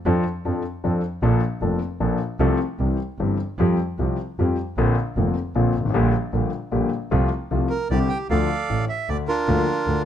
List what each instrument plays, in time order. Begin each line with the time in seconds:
0.06 double bass F2, grand piano F2 F3 C4 D4 A4
0.45 double bass F2, grand piano F2 F3 C4 D4 A4
0.84 grand piano F2 F3 C4 D4 A4, double bass F2
1.22 double bass A#1, grand piano A#1 A#2 F3 A#3 D4 A4
1.61 double bass F1, grand piano F1 F2 F3 A#3 D4 A4
2.00 double bass A#1, grand piano A#1 A#2 F3 A#3 D4 A4
2.40 double bass C2, grand piano C2 C3 F3 A3 C4 A4
2.79 double bass C2, grand piano C2 C3 E3 G3 C4 G4
3.19 double bass G1, grand piano G1 G2 E3 G3 C4 G4
3.58 double bass F2, grand piano F2 F3 G3 C4 G4
3.99 double bass C2, grand piano C2 C3 F3 G3 C4 G4
4.39 double bass F2, grand piano F2 F3 G3 C4 G4
4.77 double bass A#1, grand piano A#1 A#2 D3 A#3 C4 F4
5.16 double bass F1, grand piano F1 F2 D3 A#3 C4 F4
5.55 double bass A#1, grand piano A#1 A#2 D3 A#3 C4 F4
5.75 double bass G#1
5.80 grand piano G1
5.85 grand piano G#1
5.90 grand piano A1
5.94 grand piano A#1 A#2 D3 G3 A#3 G4, double bass A#1
6.33 double bass A#1, grand piano A#1 A#2 D3 G3 A#3 G4
6.71 grand piano A#1 A#2 D3 G3 A#3 G4, double bass A#1
7.11 grand piano C2 C3 F3 A3 F4, double bass C2
7.51 grand piano C2 C3 F3 A3 F4, double bass C2
7.69 bandoneon A#4
7.90 double bass C2, grand piano C2 C3 D3 G3 C4 E4, bandoneon G4 D5
8.09 bandoneon G5
8.30 double bass D2, grand piano D2 D3 F3 A3 F4, bandoneon A4 D5 F5
8.70 double bass A1, grand piano A1 A2
8.89 bandoneon E5
9.09 grand piano D2 D3, double bass D2, bandoneon D5
9.28 bandoneon D4 F4 A#4
9.48 double bass D2, grand piano D2 D3 F3 A#3 F4
9.87 double bass D2, grand piano D2 D3